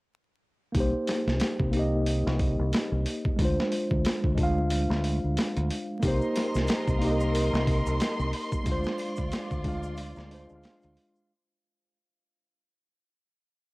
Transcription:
0.72 0.92 C2 medium
0.72 1.69 A#3 medium
0.72 1.71 D#4 medium
0.72 kick loud
0.72 open hi-hat medium
0.77 1.72 G4 medium
0.77 1.73 C5 medium
1.07 snare soft
1.07 open hi-hat medium
1.27 1.40 C2 medium
1.27 snare soft
1.40 snare loud
1.40 open hi-hat medium
1.59 2.22 C2 medium
1.59 kick medium
1.71 3.34 A#3 medium
1.71 3.35 D#4 medium
1.71 open hi-hat medium
1.76 3.37 G4 medium
1.76 3.38 D#5 medium
2.06 open hi-hat medium
2.26 2.55 C2 medium
2.26 snare soft
2.39 kick medium
2.39 open hi-hat medium
2.59 2.71 C2 medium
2.73 snare loud
2.73 open hi-hat medium
2.92 3.04 C2 medium
3.06 open hi-hat medium
3.25 kick medium
3.36 3.56 D2 medium
3.36 4.33 G#3 medium
3.36 4.35 D4 medium
3.36 kick loud
3.36 open hi-hat medium
3.42 4.36 F4 medium
3.42 4.38 C5 medium
3.60 snare medium
3.72 open hi-hat medium
3.91 4.03 D2 medium
3.91 kick medium
4.05 snare loud
4.05 open hi-hat medium
4.24 4.87 D2 medium
4.24 kick medium
4.35 5.98 G#3 medium
4.35 6.00 D4 medium
4.35 kick medium
4.35 open hi-hat medium
4.41 6.01 F4 medium
4.41 6.02 F5 medium
4.71 open hi-hat medium
4.90 5.19 D2 medium
4.90 snare soft
5.04 open hi-hat medium
5.24 5.36 D2 medium
5.37 snare loud
5.37 open hi-hat medium
5.57 5.69 D2 medium
5.57 closed hi-hat soft
5.70 open hi-hat medium
6.00 6.20 C2 medium
6.00 6.97 A#3 medium
6.00 6.98 D#4 medium
6.00 8.64 D#5 medium
6.00 11.27 C6 medium
6.00 kick loud
6.00 open hi-hat medium
6.00 shaker medium
6.04 7.00 G4 medium
6.04 8.64 A#4 medium
6.08 7.01 C5 medium
6.21 shaker soft
6.36 snare soft
6.36 open hi-hat medium
6.36 triangle medium
6.55 6.67 C2 medium
6.55 snare soft
6.55 shaker medium
6.67 snare loud
6.67 open hi-hat medium
6.67 shaker medium
6.88 7.50 C2 medium
6.88 kick medium
6.88 shaker soft
6.99 8.62 A#3 medium
6.99 8.63 D#4 medium
6.99 open hi-hat medium
7.04 8.65 G4 medium
7.04 8.66 D#5 medium
7.20 shaker medium
7.35 open hi-hat medium
7.35 shaker medium
7.53 7.82 C2 medium
7.53 snare soft
7.53 shaker soft
7.67 kick medium
7.67 open hi-hat medium
7.86 7.99 C2 medium
7.86 shaker medium
8.00 snare loud
8.00 open hi-hat medium
8.00 shaker medium
8.19 8.32 C2 medium
8.19 shaker soft
8.33 open hi-hat medium
8.52 kick medium
8.52 shaker medium
8.63 8.83 D2 medium
8.63 9.61 G#3 medium
8.63 9.62 D4 medium
8.63 11.28 F4 medium
8.63 11.28 D5 medium
8.63 kick loud
8.63 open hi-hat medium
8.63 shaker medium
8.69 9.63 F4 medium
8.69 9.65 C5 medium
8.84 snare medium
8.84 shaker soft
8.98 open hi-hat medium
8.98 triangle medium
9.16 9.31 D2 medium
9.16 kick medium
9.16 shaker medium
9.31 snare loud
9.31 open hi-hat medium
9.31 shaker medium
9.51 10.14 D2 medium
9.51 kick medium
9.51 shaker soft
9.64 10.28 G#3 medium
9.64 10.29 D4 medium
9.64 10.29 F4 medium
9.64 kick medium
9.64 open hi-hat medium
9.68 10.30 F5 medium
9.83 shaker medium
9.97 open hi-hat medium
9.97 shaker medium
10.16 10.46 D2 medium
10.16 snare soft
10.16 shaker soft
10.30 10.45 G#3 medium
10.30 10.46 D4 medium
10.30 10.47 F4 medium
10.30 open hi-hat medium
10.34 10.47 C5 medium
10.47 10.63 D2 medium
10.47 11.25 G#3 medium
10.47 11.27 D4 medium
10.47 shaker medium
10.52 11.28 F4 medium
10.52 11.29 F5 medium
10.63 snare loud
10.63 open hi-hat medium
10.63 shaker medium
10.81 10.96 D2 medium
10.81 closed hi-hat soft
10.81 shaker soft
10.97 open hi-hat medium
11.16 shaker medium

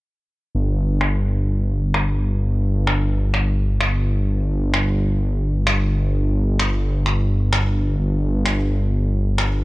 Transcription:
0.55 7.97 G1 medium
1.01 finger snap medium
1.94 finger snap medium
2.87 finger snap medium
3.34 finger snap medium
3.81 finger snap loud
4.74 finger snap medium
5.67 finger snap medium
6.59 finger snap medium
7.06 finger snap medium
7.53 finger snap loud
7.98 9.64 G1 medium
8.46 finger snap medium
9.38 finger snap medium

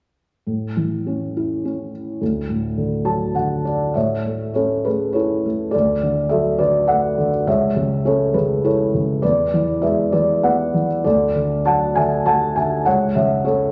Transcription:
0.47 2.18 A2 soft
0.77 1.90 E3 soft
1.07 1.64 C#4 soft
1.37 2.20 E4 soft
1.65 2.20 C#4 soft
2.21 3.91 D2 soft
2.49 3.61 A2 soft
2.78 3.33 D3 soft
3.05 3.92 F#3 soft
3.05 3.33 A5 soft
3.35 3.93 D3 soft
3.35 3.63 F#5 soft
3.65 3.93 D5 soft
3.94 5.70 A2 soft
3.94 4.52 C#5 soft
3.94 4.51 E5 medium
4.26 4.85 A3 soft
4.54 5.70 C#4 soft
4.54 4.83 A4 soft
4.54 4.86 C#5 medium
4.85 5.44 A3 soft
4.85 5.13 G#4 soft
4.85 5.16 B4 medium
5.13 5.72 E4 soft
5.13 5.69 A4 soft
5.13 5.74 C#5 medium
5.46 5.73 A3 soft
5.71 6.26 A4 soft
5.71 6.26 D5 medium
5.75 7.44 D2 medium
6.03 6.58 D3 soft
6.29 7.44 F#3 soft
6.29 6.58 A4 medium
6.29 6.60 E5 medium
6.58 7.16 D3 soft
6.58 6.86 B4 medium
6.58 6.86 D5 medium
6.87 7.45 A3 soft
6.87 7.29 D5 medium
6.87 7.29 F#5 medium
7.18 7.46 D3 soft
7.47 9.19 C#2 medium
7.47 8.02 C#5 medium
7.47 8.07 E5 medium
7.76 8.33 C#3 soft
8.05 9.19 C#4 soft
8.05 8.33 A4 medium
8.05 8.32 C#5 medium
8.34 8.93 C#3 soft
8.34 8.62 G#4 medium
8.34 8.64 B4 medium
8.64 9.21 E4 soft
8.64 9.19 A4 medium
8.64 9.25 C#5 medium
8.94 9.22 C#3 soft
9.22 11.01 E2 medium
9.22 9.78 B4 medium
9.22 9.83 D5 medium
9.54 10.12 E3 soft
9.82 11.01 G#3 soft
9.82 10.10 B4 medium
9.82 10.10 E5 medium
10.12 10.72 E3 soft
10.12 10.41 B4 soft
10.12 10.44 D5 medium
10.43 11.03 B3 soft
10.43 10.86 B4 medium
10.43 10.86 F#5 medium
10.74 11.04 E3 soft
11.04 12.82 D2 medium
11.04 11.62 A4 medium
11.04 11.62 D5 medium
11.35 11.95 D3 soft
11.65 12.82 F#3 soft
11.65 11.94 F#5 medium
11.65 11.97 A5 medium
11.95 12.55 D3 soft
11.95 12.24 E5 medium
11.95 12.24 G#5 medium
12.26 12.84 A3 soft
12.26 12.54 F#5 medium
12.26 12.57 A5 medium
12.56 12.85 D3 soft
12.56 12.84 E5 medium
12.56 12.86 G#5 medium
12.85 13.72 C#2 medium
12.85 13.13 C#5 medium
12.85 13.16 F#5 medium
13.15 13.72 C#3 soft
13.15 13.43 C#5 medium
13.15 13.43 E5 medium
13.44 13.72 C#4 soft
13.44 13.72 A4 medium
13.44 13.72 C#5 medium

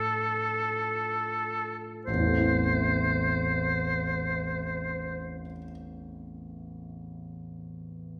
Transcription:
0.00 2.04 A2 soft
0.00 2.04 F3 soft
0.00 2.04 A3 soft
0.00 2.04 D4 soft
0.00 1.89 A4 medium
2.06 5.40 A1 soft
2.06 5.39 C5 soft
2.13 5.46 E2 soft
2.19 5.52 E3 soft
2.26 5.58 A3 soft
2.31 5.64 C4 soft
2.37 5.70 E4 soft

